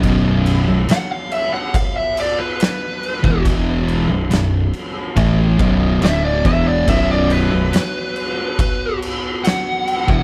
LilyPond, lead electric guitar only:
\new Staff \with { instrumentName = "Lead electric guitar" } { \time 4/4 \key b \minor \tempo 4 = 70 r4 fis''16 eis''16 e''16 fis''16 eis''16 e''16 d''16 b'16 b'4 | r2. e''16 d''16 e''16 d''16 | e''16 d''16 b'2 r8 fis''4 | }